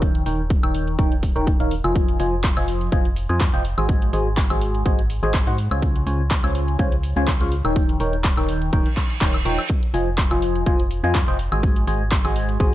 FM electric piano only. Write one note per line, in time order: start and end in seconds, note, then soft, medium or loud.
0.00 0.23 D#3 medium
0.00 0.23 D#4 medium
0.00 0.23 A#4 medium
0.00 0.23 C#5 medium
0.00 0.23 G5 medium
0.26 0.41 D#3 medium
0.26 0.41 D#4 medium
0.26 0.41 A#4 medium
0.26 0.41 C#5 medium
0.26 0.41 G5 medium
0.63 0.96 D#3 medium
0.63 0.96 D#4 medium
0.63 0.96 A#4 medium
0.63 0.96 C#5 medium
0.63 0.96 G5 medium
0.99 1.14 D#3 medium
0.99 1.14 D#4 medium
0.99 1.14 A#4 medium
0.99 1.14 C#5 medium
0.99 1.14 G5 medium
1.36 1.50 D#3 medium
1.36 1.50 D#4 medium
1.36 1.50 A#4 medium
1.36 1.50 C#5 medium
1.36 1.50 G5 loud
1.60 1.74 D#3 medium
1.60 1.74 D#4 medium
1.60 1.74 A#4 medium
1.60 1.74 C#5 medium
1.60 1.74 F5 medium
1.84 2.17 F3 medium
1.84 2.17 F4 medium
1.84 2.17 C5 medium
1.84 2.17 D#5 medium
1.84 2.17 G#5 medium
2.20 2.35 F3 medium
2.20 2.35 F4 medium
2.20 2.35 C5 medium
2.20 2.35 D#5 medium
2.20 2.35 G#5 medium
2.57 2.90 F3 medium
2.57 2.90 F4 medium
2.57 2.90 C5 medium
2.57 2.90 D#5 medium
2.57 2.90 G#5 medium
2.92 3.07 F3 medium
2.92 3.08 F4 medium
2.92 3.07 C5 medium
2.92 3.08 D#5 medium
2.92 3.08 G#5 medium
3.29 3.43 F3 medium
3.29 3.43 F4 medium
3.29 3.43 C5 medium
3.29 3.43 D#5 medium
3.29 3.43 G#5 loud
3.54 3.63 F4 medium
3.54 3.64 C5 medium
3.54 3.63 D#5 medium
3.54 3.63 G5 loud
3.78 4.11 G#3 medium
3.78 4.10 F#4 medium
3.78 4.10 C5 medium
3.78 4.10 D#5 medium
3.78 4.10 G#5 medium
4.13 4.28 G#3 medium
4.13 4.28 F#4 medium
4.13 4.28 C5 medium
4.13 4.28 D#5 medium
4.13 4.28 G#5 medium
4.50 4.83 G#3 medium
4.50 4.83 F#4 medium
4.50 4.83 C5 medium
4.50 4.83 D#5 medium
4.50 4.83 G#5 medium
4.86 5.01 G#3 medium
4.86 5.01 F#4 medium
4.86 5.01 C5 medium
4.86 5.01 D#5 medium
4.86 5.01 G#5 loud
5.23 5.37 G#3 medium
5.23 5.37 F#4 medium
5.23 5.37 C5 medium
5.23 5.37 D#5 medium
5.23 5.37 G#5 loud
5.47 5.57 F#4 medium
5.47 5.57 C5 medium
5.47 5.57 D#5 medium
5.47 5.57 F#5 loud
5.71 6.04 C#3 medium
5.71 6.04 F4 medium
5.71 6.04 C5 medium
5.71 6.04 C#5 medium
5.71 6.04 G#5 medium
6.07 6.22 C#3 medium
6.07 6.22 F4 medium
6.07 6.22 C5 medium
6.07 6.22 C#5 medium
6.07 6.22 G#5 medium
6.44 6.77 C#3 medium
6.44 6.77 F4 medium
6.44 6.77 C5 medium
6.44 6.77 C#5 medium
6.44 6.77 G#5 medium
6.79 6.95 C#3 medium
6.79 6.95 F4 medium
6.79 6.95 C5 medium
6.79 6.95 C#5 medium
6.79 6.95 G#5 loud
7.17 7.30 C#3 loud
7.17 7.30 F4 medium
7.17 7.30 C5 medium
7.17 7.30 C#5 medium
7.17 7.30 G#5 loud
7.41 7.55 C#3 medium
7.41 7.55 F4 medium
7.41 7.55 C5 medium
7.41 7.55 C#5 medium
7.41 7.55 F5 medium
7.65 7.98 D#3 medium
7.65 7.98 D#4 medium
7.65 7.98 A#4 medium
7.65 7.98 C#5 medium
7.65 7.98 G5 medium
8.00 8.15 D#3 medium
8.00 8.16 D#4 medium
8.00 8.16 A#4 medium
8.00 8.16 C#5 medium
8.00 8.16 G5 medium
8.38 8.70 D#3 medium
8.38 8.70 D#4 medium
8.38 8.70 A#4 medium
8.38 8.70 C#5 medium
8.38 8.70 G5 medium
8.73 8.88 D#3 medium
8.73 8.88 D#4 medium
8.73 8.88 A#4 medium
8.73 8.88 C#5 medium
8.73 8.88 G5 medium
9.21 9.37 D#3 medium
9.21 9.37 D#4 medium
9.21 9.37 A#4 medium
9.21 9.37 C#5 medium
9.21 9.36 G5 medium
9.45 9.61 F3 medium
9.45 9.61 D#4 medium
9.45 9.61 A#4 medium
9.45 9.61 C#5 medium
9.45 9.61 G5 loud
9.94 10.09 F3 medium
9.94 10.09 F4 medium
9.94 10.09 C5 medium
9.94 10.09 D#5 medium
9.94 10.09 G#5 medium
10.31 10.64 F3 medium
10.31 10.64 F4 medium
10.31 10.64 C5 medium
10.31 10.64 D#5 medium
10.31 10.64 G#5 medium
10.67 10.82 F3 medium
10.67 10.82 F4 medium
10.67 10.82 C5 medium
10.67 10.82 D#5 medium
10.67 10.82 G#5 medium
11.04 11.18 F3 medium
11.04 11.18 F4 medium
11.04 11.18 C5 medium
11.04 11.18 D#5 medium
11.04 11.17 G#5 loud
11.28 11.38 F4 medium
11.28 11.38 C5 medium
11.28 11.38 D#5 medium
11.28 11.38 G5 medium
11.52 11.85 G#3 medium
11.52 11.85 F#4 medium
11.52 11.85 C5 medium
11.52 11.85 D#5 medium
11.52 11.85 G#5 medium
11.87 12.03 G#3 medium
11.87 12.03 F#4 medium
11.87 12.03 C5 medium
11.87 12.03 D#5 medium
11.87 12.03 G#5 medium
12.25 12.57 G#3 medium
12.25 12.57 F#4 medium
12.25 12.57 C5 medium
12.25 12.57 D#5 medium
12.25 12.57 G#5 medium
12.60 12.74 G#3 medium
12.60 12.74 F#4 medium
12.60 12.74 C5 medium
12.60 12.74 D#5 medium
12.60 12.74 G#5 loud